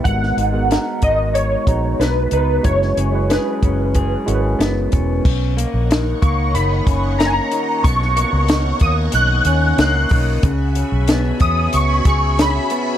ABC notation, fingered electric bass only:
X:1
M:4/4
L:1/16
Q:1/4=92
K:B
V:1 name="Fingered electric bass" clef=bass
G,,,2 G,,,3 z G,,,4 A,,,2 B,,,2 C,,2 | F,,,2 F,,,3 z F,,,4 G,,,2 F,,,2 E,,,2 | B,,,3 A,,,3 C,,2 F,,,2 F,,,4 z2 | B,,,3 C,,3 D,,2 B,,,2 D,,2 C,,2 B,,,2 |
C,,3 B,,,3 E,,2 C,,2 C,,4 z2 |]